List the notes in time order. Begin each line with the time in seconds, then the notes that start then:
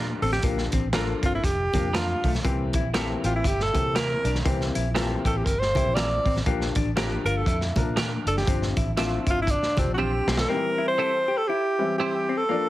Already playing: A#2 F3 A#3 D4 G4
0.22 A1 C4 A4, open hi-hat
0.32 G4, snare, high conga
0.42 A#1 F3 A#3 D4 G4, kick, closed hi-hat, muted conga
0.58 snare
0.72 A1 C4, kick, closed hi-hat, muted conga
0.93 F3 G3 A#3 D4 F4 A4 A#4, snare, closed hi-hat, high conga
1.23 G1 C4 F4, kick, closed hi-hat
1.35 E4
1.44 F1 G4, kick, closed hi-hat
1.73 F2 F3 A#3 D4 G4, kick, closed hi-hat, muted conga, low conga
1.93 G3 D4 F4 A#4, snare, closed hi-hat, high conga
2.24 B1 A3, kick, open hi-hat
2.35 snare, high conga
2.44 C2 E3 A#3 C4 G4, kick, closed hi-hat, muted conga
2.73 A#1 E4, kick, closed hi-hat, muted conga
2.93 E3 G3 A#3 C4 E4 G4 A4 A#4, snare, closed hi-hat, high conga
3.24 A1 F4 G4, closed hi-hat
3.36 E4
3.44 G1 E4 G4, kick, closed hi-hat
3.60 A4, snare
3.73 C3 E3 A#3 C4 G4, kick, closed hi-hat, muted conga, low conga
3.95 G3 C4 E4 A#4, snare, closed hi-hat, high conga
4.24 B1 D4, closed hi-hat
4.35 snare, high conga
4.45 C2 E3 A#3 C4 G4, kick, closed hi-hat
4.61 snare
4.75 A#1 E4, closed hi-hat, muted conga
4.94 E3 G3 A#3 C4 E4 F4 A4 A#4, snare, closed hi-hat, high conga
5.02 G4
5.25 A1 G4 A4, kick, closed hi-hat
5.37 G4
5.45 G1 A#4, kick, closed hi-hat
5.60 C5, snare
5.75 E3 A#3 C4 E4 G4, kick, closed hi-hat, muted conga, low conga
5.86 A#1
5.94 G3 C4 E4 A#4 D5, snare, closed hi-hat, high conga
6.25 A1 C4, kick, open hi-hat
6.36 snare, high conga
6.46 A#1 F3 A#3 D4 G4, kick, closed hi-hat, muted conga
6.61 snare
6.75 A1 D4, kick, closed hi-hat, muted conga
6.96 F3 A#3 C4 D4 G4 A#4, snare, closed hi-hat, high conga
7.02 D4
7.25 G1 F4 A#4, closed hi-hat
7.37 A4
7.46 F2 E4, kick, closed hi-hat
7.61 snare
7.76 A#2 F3 A#3 D4 A#4, kick, closed hi-hat, muted conga, low conga
7.96 A#3 D4 G4 A#4, snare, closed hi-hat, high conga
8.26 F#1 D4 A4, closed hi-hat
8.37 G4, snare, high conga
8.46 G1 F3 C4 D4 G4, kick, closed hi-hat, muted conga
8.62 snare
8.77 A1 E4, kick, closed hi-hat, muted conga
8.96 F3 C4 D4 E4 F4 G4 C5, snare, closed hi-hat, high conga
9.27 G1 E4 F4, kick, closed hi-hat
9.42 E4
9.47 D4, kick, closed hi-hat
9.63 snare
9.76 F1 F3 C4 D4 G4, kick, closed hi-hat, muted conga, low conga
9.87 A#1
9.94 F#4 G4
9.98 C4 F4 G4 C5, high conga
10.27 B1 C4, snare
10.37 A4, snare, high conga
10.48 D#3 G3 C4 G4 A#4
10.54 E3
10.78 E4
10.88 C5
10.98 C4 E4 G4 A4 C5
11.28 G4
11.38 A4
11.47 E4 G4
11.78 E3 G3 C4 E4
11.98 C4 E4 G4 C5
12.29 C4
12.37 A4
12.49 F3 A#3 D4 D5